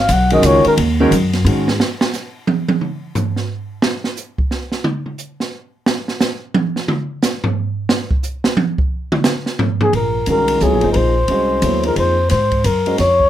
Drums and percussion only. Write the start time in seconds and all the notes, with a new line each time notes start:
0.09 hi-hat pedal, ride
0.30 ride
0.43 hi-hat pedal, ride
0.65 ride
0.78 ride
1.12 hi-hat pedal, ride
1.33 snare, ride
1.46 ride
1.68 snare
1.80 snare
2.01 snare
2.13 snare, hi-hat pedal
2.47 high tom
2.69 high tom
2.81 mid tom
3.15 floor tom, hi-hat pedal
3.36 snare
3.82 snare
4.04 snare
4.17 hi-hat pedal
4.38 kick
4.51 snare
4.72 snare
4.84 mid tom
5.06 mid tom
5.18 hi-hat pedal
5.40 snare
5.86 snare
6.08 snare
6.20 snare, hi-hat pedal
6.54 high tom
6.76 snare
6.88 mid tom
7.22 snare, hi-hat pedal
7.44 floor tom
7.89 snare
8.11 kick
8.23 hi-hat pedal
8.44 snare
8.57 high tom
8.78 kick
9.12 mid tom
9.24 snare, hi-hat pedal
9.46 snare
9.59 floor tom
9.81 floor tom
9.93 ride
10.26 hi-hat pedal, ride
10.48 ride
10.60 hi-hat pedal
10.81 ride
10.94 ride
11.28 ride
11.62 hi-hat pedal, ride
11.83 ride
11.96 ride
12.29 snare, hi-hat pedal, ride
12.51 kick, ride
12.64 hi-hat pedal, ride
12.86 ride
12.98 snare, ride
13.20 kick